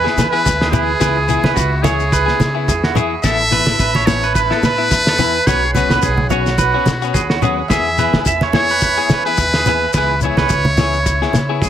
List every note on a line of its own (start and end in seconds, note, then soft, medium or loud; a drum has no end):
0.00 0.28 B4 loud
0.00 3.20 E5 medium
0.00 0.99 G#5 medium
0.00 3.20 B5 medium
0.04 0.21 B3 soft
0.04 0.21 E4 soft
0.04 0.20 G#4 medium
0.04 0.18 G#4 medium
0.04 snare soft
0.17 0.41 E3 loud
0.17 0.45 B4 medium
0.17 snare medium
0.17 high conga medium
0.17 shekere loud
0.31 0.49 B3 soft
0.31 0.49 E4 medium
0.31 0.48 G#4 medium
0.31 0.69 B4 loud
0.46 0.93 D2 loud
0.46 kick loud
0.46 snare soft
0.46 shekere medium
0.61 0.73 G#4 medium
0.61 snare medium
0.71 0.90 E3 medium
0.71 0.91 B3 medium
0.71 0.91 E4 medium
0.71 1.51 G#4 medium
0.71 1.00 B4 medium
0.71 low conga medium
0.71 shekere loud
1.00 1.38 C#2 loud
1.00 1.18 E3 medium
1.00 1.18 B3 medium
1.00 1.19 E4 medium
1.00 1.19 G#4 medium
1.00 1.16 B4 medium
1.00 3.22 C#6 medium
1.00 kick medium
1.00 snare medium
1.00 shekere medium
1.17 1.43 G#4 medium
1.28 1.44 E3 medium
1.28 1.43 B3 medium
1.28 1.42 E4 medium
1.28 1.41 G#4 medium
1.28 shekere loud
1.42 1.54 C#2 medium
1.42 1.60 B3 soft
1.42 1.60 E4 medium
1.42 1.59 G#4 medium
1.42 1.71 B4 medium
1.42 snare medium
1.42 high conga medium
1.54 2.27 C#2 loud
1.54 1.84 F#4 medium
1.54 kick loud
1.54 shekere medium
1.82 2.02 E3 medium
1.82 2.02 B3 medium
1.82 2.02 E4 medium
1.82 2.95 G#4 medium
1.82 2.02 G#4 medium
1.82 2.11 C#5 medium
1.82 snare medium
1.82 low conga medium
1.82 shekere loud
2.00 shekere soft
2.12 2.39 B4 medium
2.12 kick medium
2.12 shekere medium
2.26 2.44 B3 soft
2.26 2.42 G#4 medium
2.26 snare soft
2.40 2.64 C#3 loud
2.40 snare medium
2.40 high conga medium
2.40 shekere medium
2.55 2.72 B3 soft
2.55 2.71 E4 soft
2.55 2.71 G#4 medium
2.68 3.15 E2 loud
2.68 2.83 G#4 medium
2.68 kick loud
2.68 shekere medium
2.83 2.96 F#4 medium
2.83 snare medium
2.95 3.13 E3 medium
2.95 3.14 B3 medium
2.95 3.14 E4 medium
2.95 3.14 G#4 medium
2.95 3.23 G#4 medium
2.95 low conga medium
2.95 shekere medium
3.23 3.60 A1 loud
3.23 3.42 E3 medium
3.23 3.42 B3 medium
3.23 3.42 E4 medium
3.23 3.51 A4 loud
3.23 4.08 E5 loud
3.23 5.45 E5 medium
3.23 5.45 A5 medium
3.23 7.67 B5 medium
3.23 kick medium
3.23 snare medium
3.23 shekere medium
3.51 3.67 E3 medium
3.51 3.67 B3 medium
3.51 3.78 B4 medium
3.51 muted clean electric guitar stroke medium
3.51 snare soft
3.51 shekere loud
3.66 3.77 A1 loud
3.66 3.84 B3 soft
3.66 3.83 E4 medium
3.66 snare medium
3.66 high conga medium
3.79 4.50 A1 loud
3.79 3.95 B4 medium
3.79 kick medium
3.79 shekere medium
3.95 4.22 C#5 medium
3.95 snare soft
3.95 high conga medium
4.06 4.25 E3 medium
4.06 4.25 B3 medium
4.06 4.34 C#5 loud
4.06 snare medium
4.06 low conga medium
4.06 shekere medium
4.23 4.35 B4 medium
4.23 shekere soft
4.35 5.48 B4 loud
4.35 4.50 B4 loud
4.35 kick medium
4.35 shekere medium
4.50 4.67 B3 medium
4.50 4.66 E4 medium
4.50 4.63 A4 medium
4.50 snare soft
4.63 4.87 A2 medium
4.63 4.91 B4 medium
4.63 snare medium
4.63 high conga medium
4.63 shekere loud
4.78 4.95 B3 soft
4.78 4.94 E4 medium
4.91 5.38 E2 medium
4.91 kick medium
4.91 snare soft
4.91 shekere medium
5.07 5.19 A4 medium
5.07 snare medium
5.18 5.37 E3 medium
5.18 5.37 B3 medium
5.18 5.38 E4 medium
5.18 5.46 B4 medium
5.18 low conga medium
5.18 shekere loud
5.47 5.84 B1 loud
5.47 5.65 F#3 medium
5.47 5.65 B3 medium
5.47 5.65 C#4 medium
5.47 5.66 F#4 medium
5.47 5.62 B4 medium
5.47 5.73 C#5 loud
5.47 7.69 C#5 medium
5.47 7.69 F#5 medium
5.47 kick medium
5.47 snare medium
5.47 shekere medium
5.63 5.89 G#4 medium
5.74 5.90 F#3 medium
5.74 5.91 B3 medium
5.74 5.91 C#4 medium
5.74 5.89 F#4 medium
5.74 6.00 B4 loud
5.74 high conga medium
5.74 shekere loud
5.89 6.00 B1 loud
5.89 6.07 B3 soft
5.89 6.07 C#4 soft
5.89 6.06 F#4 soft
5.89 6.17 B4 medium
5.89 snare medium
5.89 shekere soft
6.02 6.74 B1 loud
6.02 6.29 G#4 medium
6.02 kick loud
6.02 shekere medium
6.18 high conga medium
6.30 6.49 F#3 medium
6.30 6.49 B3 medium
6.30 6.49 C#4 medium
6.30 7.38 F#4 medium
6.30 6.50 F#4 medium
6.30 6.57 C#5 medium
6.30 low conga medium
6.30 shekere medium
6.46 snare soft
6.46 shekere soft
6.58 6.85 B4 loud
6.58 kick medium
6.58 high conga medium
6.58 shekere medium
6.74 6.91 B3 soft
6.74 6.90 C#4 medium
6.74 6.90 F#4 medium
6.86 7.10 B2 medium
6.86 snare medium
6.86 high conga medium
6.86 shekere loud
7.02 7.19 B3 medium
7.02 7.19 C#4 medium
7.02 7.18 F#4 medium
7.02 shekere soft
7.14 7.62 D#2 loud
7.14 7.29 G#4 medium
7.14 kick loud
7.14 snare soft
7.14 shekere medium
7.30 7.42 F#4 medium
7.30 snare medium
7.42 7.60 F#3 medium
7.42 7.61 B3 medium
7.42 7.61 C#4 medium
7.42 7.61 F#4 medium
7.42 7.69 G#4 medium
7.42 low conga medium
7.42 shekere medium
7.69 8.07 E2 loud
7.69 7.88 E3 medium
7.69 7.89 B3 medium
7.69 7.89 E4 medium
7.69 7.97 G#4 medium
7.69 7.89 G#4 medium
7.69 11.70 E5 medium
7.69 8.22 E5 loud
7.69 9.91 G#5 medium
7.69 9.91 B5 medium
7.69 kick medium
7.69 snare medium
7.69 shekere medium
7.98 8.14 E3 medium
7.98 8.14 B3 medium
7.98 8.13 E4 medium
7.98 8.12 G#4 medium
7.98 8.25 B4 medium
7.98 shekere medium
8.13 8.24 E2 medium
8.13 8.30 B3 soft
8.13 8.30 E4 soft
8.13 8.29 G#4 medium
8.13 snare medium
8.13 high conga medium
8.26 8.97 E2 loud
8.26 8.41 E5 medium
8.26 kick loud
8.26 shekere medium
8.41 8.69 C#5 medium
8.41 snare soft
8.41 high conga medium
8.53 8.72 E3 medium
8.53 8.72 B3 medium
8.53 8.73 E4 medium
8.53 8.73 G#4 medium
8.53 9.22 C#5 loud
8.53 snare medium
8.53 low conga medium
8.69 8.82 B4 medium
8.69 shekere soft
8.81 8.97 B4 medium
8.81 kick loud
8.81 shekere medium
8.98 9.14 B3 soft
8.98 9.14 E4 medium
8.98 9.13 G#4 medium
8.98 9.10 G#4 medium
9.09 9.34 E3 loud
9.09 9.38 B4 medium
9.09 snare medium
9.09 high conga medium
9.09 shekere loud
9.26 9.43 B3 soft
9.26 9.42 E4 medium
9.26 9.42 G#4 medium
9.26 9.90 B4 loud
9.37 9.85 D#2 medium
9.37 kick medium
9.37 shekere medium
9.54 9.66 G#4 medium
9.54 snare medium
9.66 9.85 E3 medium
9.66 9.85 B3 medium
9.66 9.85 E4 medium
9.66 9.86 G#4 medium
9.66 9.93 B4 medium
9.66 low conga medium
9.66 shekere loud
9.93 10.31 C#2 loud
9.93 10.13 E3 medium
9.93 10.20 B4 loud
9.93 10.09 B4 medium
9.93 11.70 B5 medium
9.93 11.70 C#6 medium
9.93 kick medium
9.93 snare medium
9.93 shekere medium
9.97 10.14 B3 medium
9.97 10.14 E4 medium
9.97 10.14 G#4 medium
10.10 muted clean electric guitar stroke medium
10.21 10.38 E3 medium
10.21 10.39 B3 medium
10.21 10.38 E4 medium
10.21 11.70 C#5 loud
10.21 shekere loud
10.26 10.36 G#4 medium
10.37 10.48 C#2 medium
10.37 10.55 B3 soft
10.37 10.53 G#4 medium
10.37 10.64 B4 medium
10.37 snare medium
10.37 high conga medium
10.49 11.21 C#2 loud
10.49 kick loud
10.49 shekere medium
10.65 high conga medium
10.77 10.96 E3 medium
10.77 10.97 B3 medium
10.77 10.97 E4 medium
10.77 10.97 G#4 medium
10.77 11.05 C#5 medium
10.77 snare medium
10.77 low conga medium
10.77 shekere medium
10.93 shekere soft
11.06 muted clean electric guitar stroke medium
11.06 kick medium
11.06 shekere medium
11.22 11.39 B3 soft
11.22 11.38 E4 medium
11.22 11.38 G#4 medium
11.22 snare soft
11.33 11.58 C#3 medium
11.33 snare medium
11.33 high conga medium
11.33 shekere loud
11.49 11.66 B3 soft
11.49 11.66 E4 medium
11.49 11.65 G#4 medium
11.61 11.70 E2 loud
11.61 11.70 G#4 medium
11.61 kick loud
11.61 snare soft
11.61 shekere medium